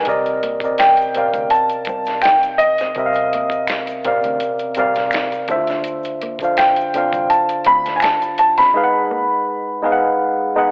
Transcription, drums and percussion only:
0.05 kick, closed hi-hat, shaker
0.25 closed hi-hat, shaker
0.43 closed hi-hat
0.60 kick, closed hi-hat, shaker
0.78 finger snap, snare, closed hi-hat, shaker
0.97 closed hi-hat, shaker
1.15 closed hi-hat, shaker
1.34 kick, closed hi-hat, shaker
1.50 closed hi-hat, shaker
1.69 closed hi-hat, shaker
1.85 kick, closed hi-hat, shaker
2.05 snare, closed hi-hat, shaker
2.21 finger snap, snare, closed hi-hat, shaker
2.26 finger snap
2.43 closed hi-hat, shaker
2.59 closed hi-hat, shaker
2.78 snare, closed hi-hat, shaker
2.95 kick, closed hi-hat, shaker
3.13 closed hi-hat, shaker
3.33 closed hi-hat
3.50 kick, closed hi-hat, shaker
3.67 finger snap, snare, closed hi-hat, shaker
3.70 finger snap
3.87 closed hi-hat, shaker
4.04 kick, closed hi-hat, shaker
4.23 closed hi-hat, shaker
4.40 closed hi-hat, shaker
4.59 closed hi-hat, shaker
4.75 closed hi-hat, shaker
4.94 snare, closed hi-hat, shaker
5.11 finger snap, snare, closed hi-hat, shaker
5.15 finger snap
5.32 closed hi-hat, shaker
5.48 kick, closed hi-hat, shaker
5.67 snare, closed hi-hat, shaker
5.84 closed hi-hat, shaker
6.04 closed hi-hat, shaker
6.22 closed hi-hat
6.39 kick, closed hi-hat, shaker
6.57 finger snap, snare, closed hi-hat, shaker
6.59 finger snap
6.76 closed hi-hat, shaker
6.94 closed hi-hat, shaker
7.13 kick, closed hi-hat, shaker
7.30 closed hi-hat, shaker
7.49 closed hi-hat, shaker
7.65 kick, closed hi-hat, shaker
7.85 snare, closed hi-hat, shaker
8.00 finger snap, snare, closed hi-hat, shaker
8.04 finger snap
8.22 closed hi-hat, shaker
8.38 closed hi-hat, shaker
8.58 snare, closed hi-hat, shaker

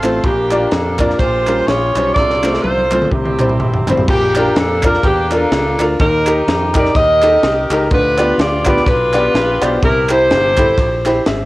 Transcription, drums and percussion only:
0.03 clap, ride
0.24 kick, ride
0.51 clap, ride
0.71 snare, ride
0.99 kick, clap, ride
1.10 snare
1.19 kick, ride
1.47 clap, ride
1.68 snare, ride
1.95 clap, ride
2.16 kick, snare
2.30 snare
2.43 snare, clap
2.54 snare
2.64 high tom
2.78 high tom
2.91 clap, high tom
3.02 mid tom
3.11 kick, mid tom
3.26 mid tom
3.39 clap, mid tom
3.49 mid tom
3.60 mid tom
3.74 floor tom
3.87 clap, floor tom
3.98 floor tom
4.08 kick, crash
4.35 clap, ride
4.56 snare, ride
4.83 kick, clap, ride
4.94 snare
5.03 kick, ride
5.30 snare, clap, ride
5.52 snare, ride
5.79 clap, ride
6.00 kick, ride
6.27 clap, ride
6.48 snare, ride
6.74 kick, clap, ride
6.85 snare
6.95 kick, ride
7.22 snare, clap, ride
7.43 snare, ride
7.70 clap, ride
7.91 kick, ride
8.18 clap, ride
8.39 snare, ride
8.65 kick, clap, ride
8.77 snare
8.87 kick, ride
9.13 snare, clap, ride
9.35 snare, ride
9.62 clap, ride
9.83 kick, ride
10.09 clap, ride
10.31 snare, ride
10.57 kick, clap, ride
10.78 kick, ride
11.05 snare, clap, ride
11.26 snare, ride

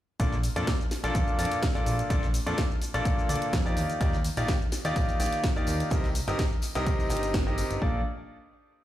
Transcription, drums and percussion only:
0.20 kick, closed hi-hat, shaker
0.32 snare, shaker
0.43 closed hi-hat, open hi-hat, shaker
0.56 closed hi-hat, shaker
0.67 kick, snare, closed hi-hat, shaker
0.81 shaker
0.91 snare, closed hi-hat, open hi-hat, shaker
1.04 snare, closed hi-hat, shaker
1.15 kick, closed hi-hat, shaker
1.28 closed hi-hat, shaker
1.39 closed hi-hat, open hi-hat, shaker
1.45 closed hi-hat
1.51 snare, closed hi-hat, shaker
1.63 kick, snare, closed hi-hat, shaker
1.75 closed hi-hat, shaker
1.86 closed hi-hat, open hi-hat, shaker
1.99 closed hi-hat, shaker
2.10 kick, closed hi-hat, shaker
2.23 snare, shaker
2.34 closed hi-hat, open hi-hat, shaker
2.47 snare, closed hi-hat, shaker
2.58 kick, snare, closed hi-hat, shaker
2.71 shaker
2.82 closed hi-hat, open hi-hat, shaker
2.94 closed hi-hat, shaker
3.05 kick, closed hi-hat, shaker
3.19 shaker
3.29 closed hi-hat, open hi-hat, shaker
3.36 closed hi-hat
3.42 closed hi-hat, shaker
3.53 kick, snare, closed hi-hat, shaker
3.66 shaker
3.77 closed hi-hat, open hi-hat, shaker
3.90 closed hi-hat, shaker
4.01 kick, closed hi-hat, tambourine, shaker
4.13 snare, tambourine, shaker
4.24 closed hi-hat, open hi-hat, tambourine, shaker
4.37 closed hi-hat, tambourine, shaker
4.48 kick, snare, closed hi-hat, tambourine, shaker
4.62 shaker
4.72 snare, closed hi-hat, open hi-hat, tambourine, shaker
4.85 snare, closed hi-hat, tambourine, shaker
4.96 kick, closed hi-hat, tambourine, shaker
5.08 closed hi-hat, tambourine, shaker
5.20 closed hi-hat, open hi-hat, tambourine, shaker
5.26 closed hi-hat
5.32 snare, closed hi-hat, tambourine, shaker
5.44 kick, snare, closed hi-hat, tambourine, shaker
5.56 closed hi-hat, shaker
5.67 closed hi-hat, open hi-hat, tambourine, shaker
5.80 closed hi-hat, tambourine, shaker
5.90 kick, closed hi-hat, tambourine, shaker
6.04 snare, tambourine, shaker
6.15 closed hi-hat, open hi-hat, tambourine, shaker
6.28 snare, closed hi-hat, shaker
6.39 kick, snare, closed hi-hat, tambourine, shaker
6.52 shaker
6.62 closed hi-hat, open hi-hat, tambourine, shaker
6.75 closed hi-hat, shaker
6.86 kick, closed hi-hat, tambourine, shaker
7.00 tambourine, shaker
7.10 closed hi-hat, open hi-hat, tambourine, shaker
7.17 closed hi-hat
7.23 closed hi-hat, tambourine, shaker
7.34 kick, snare, closed hi-hat, tambourine, shaker
7.47 shaker
7.58 closed hi-hat, open hi-hat, tambourine, shaker
7.71 closed hi-hat, tambourine, shaker
7.82 kick

